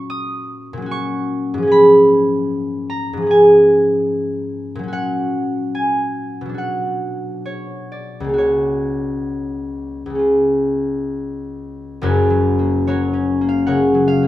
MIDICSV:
0, 0, Header, 1, 2, 480
1, 0, Start_track
1, 0, Key_signature, 6, "major"
1, 0, Tempo, 800000
1, 1033, Time_signature, 4, 2, 24, 8
1, 2472, Tempo, 825309
1, 3912, Tempo, 873362
1, 4392, Tempo, 925926
1, 5832, Tempo, 890208
1, 6792, Tempo, 820793
1, 8107, End_track
2, 0, Start_track
2, 0, Title_t, "Harp"
2, 0, Program_c, 0, 46
2, 0, Note_on_c, 0, 46, 70
2, 0, Note_on_c, 0, 54, 62
2, 0, Note_on_c, 0, 61, 62
2, 0, Note_on_c, 0, 66, 70
2, 0, Note_on_c, 0, 82, 125
2, 0, Note_on_c, 0, 85, 116
2, 59, Note_on_c, 0, 87, 121
2, 432, Note_off_c, 0, 46, 0
2, 439, Note_on_c, 0, 46, 82
2, 457, Note_off_c, 0, 54, 0
2, 465, Note_on_c, 0, 54, 61
2, 486, Note_off_c, 0, 61, 0
2, 493, Note_on_c, 0, 61, 62
2, 509, Note_off_c, 0, 66, 0
2, 516, Note_on_c, 0, 66, 64
2, 541, Note_off_c, 0, 85, 0
2, 548, Note_on_c, 0, 85, 120
2, 884, Note_off_c, 0, 87, 0
2, 923, Note_on_c, 0, 44, 83
2, 947, Note_on_c, 0, 53, 66
2, 968, Note_off_c, 0, 61, 0
2, 975, Note_on_c, 0, 61, 63
2, 996, Note_off_c, 0, 46, 0
2, 1005, Note_on_c, 0, 68, 64
2, 1008, Note_off_c, 0, 54, 0
2, 1030, Note_on_c, 0, 83, 122
2, 1034, Note_off_c, 0, 66, 0
2, 1049, Note_off_c, 0, 82, 0
2, 1738, Note_on_c, 0, 82, 106
2, 1872, Note_off_c, 0, 44, 0
2, 1880, Note_on_c, 0, 44, 69
2, 1897, Note_off_c, 0, 53, 0
2, 1904, Note_on_c, 0, 53, 58
2, 1925, Note_off_c, 0, 61, 0
2, 1932, Note_on_c, 0, 61, 57
2, 1953, Note_off_c, 0, 68, 0
2, 1960, Note_on_c, 0, 68, 60
2, 1985, Note_on_c, 0, 80, 100
2, 2151, Note_off_c, 0, 82, 0
2, 2841, Note_on_c, 0, 46, 77
2, 2861, Note_on_c, 0, 54, 61
2, 2875, Note_off_c, 0, 85, 0
2, 2881, Note_off_c, 0, 61, 0
2, 2888, Note_on_c, 0, 61, 61
2, 2914, Note_on_c, 0, 66, 61
2, 2915, Note_off_c, 0, 44, 0
2, 2927, Note_off_c, 0, 53, 0
2, 2941, Note_on_c, 0, 78, 116
2, 2954, Note_off_c, 0, 68, 0
2, 2965, Note_off_c, 0, 83, 0
2, 2966, Note_off_c, 0, 80, 0
2, 3419, Note_on_c, 0, 80, 105
2, 3804, Note_on_c, 0, 47, 62
2, 3823, Note_off_c, 0, 54, 0
2, 3830, Note_on_c, 0, 54, 47
2, 3851, Note_on_c, 0, 62, 54
2, 3874, Note_off_c, 0, 66, 0
2, 3878, Note_off_c, 0, 46, 0
2, 3881, Note_on_c, 0, 66, 50
2, 3896, Note_off_c, 0, 78, 0
2, 3902, Note_off_c, 0, 61, 0
2, 3903, Note_on_c, 0, 78, 93
2, 4240, Note_off_c, 0, 80, 0
2, 4384, Note_on_c, 0, 73, 84
2, 4624, Note_on_c, 0, 74, 69
2, 4772, Note_on_c, 0, 37, 63
2, 4792, Note_on_c, 0, 58, 49
2, 4795, Note_off_c, 0, 73, 0
2, 4817, Note_on_c, 0, 61, 51
2, 4834, Note_off_c, 0, 66, 0
2, 4840, Note_on_c, 0, 66, 55
2, 4844, Note_off_c, 0, 47, 0
2, 4865, Note_off_c, 0, 62, 0
2, 4865, Note_on_c, 0, 73, 79
2, 4890, Note_off_c, 0, 74, 0
2, 5728, Note_off_c, 0, 37, 0
2, 5734, Note_on_c, 0, 37, 55
2, 5755, Note_on_c, 0, 56, 42
2, 5776, Note_off_c, 0, 61, 0
2, 5782, Note_on_c, 0, 61, 47
2, 5802, Note_on_c, 0, 65, 45
2, 5811, Note_off_c, 0, 58, 0
2, 5815, Note_off_c, 0, 54, 0
2, 5835, Note_off_c, 0, 66, 0
2, 5848, Note_off_c, 0, 78, 0
2, 6759, Note_off_c, 0, 37, 0
2, 6770, Note_off_c, 0, 56, 0
2, 6786, Note_on_c, 0, 30, 86
2, 6790, Note_off_c, 0, 61, 0
2, 6791, Note_on_c, 0, 42, 85
2, 6791, Note_on_c, 0, 70, 112
2, 6795, Note_off_c, 0, 65, 0
2, 6795, Note_on_c, 0, 61, 95
2, 6800, Note_on_c, 0, 66, 87
2, 6941, Note_off_c, 0, 73, 0
2, 6953, Note_on_c, 0, 54, 71
2, 7120, Note_on_c, 0, 58, 55
2, 7280, Note_off_c, 0, 54, 0
2, 7284, Note_off_c, 0, 66, 0
2, 7286, Note_on_c, 0, 54, 70
2, 7287, Note_on_c, 0, 73, 94
2, 7288, Note_off_c, 0, 70, 0
2, 7291, Note_on_c, 0, 66, 79
2, 7295, Note_on_c, 0, 70, 78
2, 7432, Note_off_c, 0, 61, 0
2, 7439, Note_on_c, 0, 61, 63
2, 7595, Note_off_c, 0, 58, 0
2, 7602, Note_on_c, 0, 58, 70
2, 7645, Note_on_c, 0, 77, 95
2, 7749, Note_off_c, 0, 73, 0
2, 7750, Note_off_c, 0, 70, 0
2, 7750, Note_on_c, 0, 78, 99
2, 7753, Note_on_c, 0, 49, 67
2, 7755, Note_on_c, 0, 70, 77
2, 7757, Note_on_c, 0, 73, 73
2, 7841, Note_off_c, 0, 77, 0
2, 7907, Note_off_c, 0, 54, 0
2, 7914, Note_on_c, 0, 54, 73
2, 7990, Note_on_c, 0, 77, 105
2, 8072, Note_off_c, 0, 58, 0
2, 8079, Note_on_c, 0, 58, 67
2, 8107, Note_off_c, 0, 30, 0
2, 8107, Note_off_c, 0, 42, 0
2, 8107, Note_off_c, 0, 49, 0
2, 8107, Note_off_c, 0, 54, 0
2, 8107, Note_off_c, 0, 58, 0
2, 8107, Note_off_c, 0, 61, 0
2, 8107, Note_off_c, 0, 66, 0
2, 8107, Note_off_c, 0, 70, 0
2, 8107, Note_off_c, 0, 73, 0
2, 8107, Note_off_c, 0, 77, 0
2, 8107, Note_off_c, 0, 78, 0
2, 8107, End_track
0, 0, End_of_file